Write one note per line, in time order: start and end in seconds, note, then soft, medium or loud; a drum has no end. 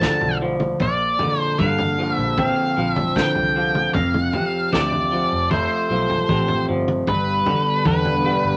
0.00 0.15 D2 medium
0.00 0.81 D3 medium
0.00 0.41 F3 medium
0.00 0.80 A3 medium
0.00 0.37 A5 medium
0.00 kick loud
0.00 snare medium
0.21 0.74 B1 medium
0.21 floor tom medium
0.42 1.98 F3 medium
0.60 mid tom medium
0.80 1.15 A#1 medium
0.80 2.77 A#2 medium
0.80 1.40 D5 medium
0.80 kick loud
0.80 floor tom medium
1.19 1.59 D3 medium
1.19 floor tom medium
1.40 1.59 C5 medium
1.59 2.11 G2 medium
1.59 3.16 D3 medium
1.59 2.15 F5 medium
1.59 kick loud
1.79 floor tom medium
1.99 2.76 F3 medium
2.15 2.52 A#1 medium
2.15 2.38 E5 medium
2.38 3.95 C4 medium
2.38 2.94 F5 medium
2.38 kick loud
2.38 floor tom medium
2.77 3.29 A#1 medium
2.77 3.55 F3 medium
2.94 3.16 E5 medium
2.94 floor tom medium
2.94 mid tom medium
3.16 3.95 D3 medium
3.16 3.91 G5 medium
3.16 kick loud
3.16 snare medium
3.35 3.87 C2 medium
3.35 floor tom medium
3.56 3.95 F3 medium
3.75 mid tom medium
3.94 4.29 F1 medium
3.94 5.91 F2 medium
3.94 4.75 F5 medium
3.94 kick loud
3.94 floor tom medium
4.14 mid tom medium
4.33 4.71 C3 medium
4.33 floor tom medium
4.72 5.24 D2 medium
4.72 6.29 C3 medium
4.72 5.50 D5 medium
4.72 kick loud
4.72 snare medium
4.92 floor tom medium
5.12 5.90 F3 medium
5.32 5.66 F1 medium
5.51 7.08 A3 medium
5.51 6.64 C5 medium
5.51 kick loud
5.51 floor tom medium
5.90 6.26 B1 medium
5.90 6.68 F3 medium
6.10 floor tom medium
6.29 6.64 A1 medium
6.29 7.08 C3 medium
6.29 kick loud
6.48 floor tom medium
6.69 7.04 G1 medium
6.69 7.08 F3 medium
6.88 mid tom medium
7.07 7.42 G1 medium
7.07 8.57 G2 medium
7.07 8.57 G3 medium
7.07 8.57 B3 medium
7.07 8.57 D4 medium
7.07 8.57 B4 medium
7.07 7.86 B4 medium
7.07 8.57 D5 medium
7.07 kick medium
7.07 floor tom medium
7.46 7.84 D3 medium
7.46 floor tom medium
7.85 8.37 E2 medium
7.85 8.57 D3 medium
7.85 8.57 B4 medium
7.85 kick loud
8.05 floor tom medium
8.25 8.57 G3 medium
8.44 8.57 G1 medium